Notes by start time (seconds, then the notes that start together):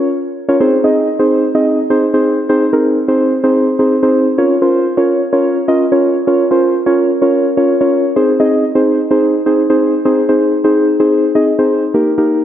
0.49 C#4 F4 A#4 C#5
0.60 C4 D#4 G#4 C5
0.84 C4 D#4 G#4 D#5
1.19 C4 D#4 G#4 C5
1.55 C4 D#4 G#4 D#5
1.90 C4 D#4 G#4 C5
2.14 C4 D#4 G#4 C5
2.49 C4 D#4 G#4 C5
2.73 C4 D#4 G#4 A#4
3.08 C4 D#4 G#4 C5
3.44 C4 D#4 G#4 C5
3.79 C4 D#4 G#4 C5
4.03 C4 D#4 G#4 C5
4.38 C#4 F4 A#4 C#5
4.62 C#4 F4 A#4 C5
4.97 C#4 F4 A#4 C#5
5.33 C#4 F4 A#4 C#5
5.68 C#4 F4 A#4 D#5
5.92 C#4 F4 A#4 C#5
6.27 C#4 F4 A#4 C#5
6.51 C#4 F4 A#4 C5
6.86 C#4 F4 A#4 C#5
7.22 C#4 F4 A#4 C#5
7.57 C#4 F4 A#4 C#5
7.81 C#4 F4 A#4 C#5
8.16 C4 D#4 G#4 C5
8.40 C4 D#4 G#4 D#5
8.75 C4 D#4 G#4 C5
9.11 C4 D#4 G#4 C5
9.46 C4 D#4 G#4 C5
9.70 C4 D#4 G#4 C5
10.05 C4 D#4 G#4 C5
10.29 C4 D#4 G#4 C5
10.64 C4 D#4 G#4 C5
11.00 C4 D#4 G#4 C5
11.35 C4 D#4 G#4 D#5
11.59 C4 D#4 G#4 C5
11.94 A#3 D#4 G4 A#4
12.18 A#3 D#4 G4 A#4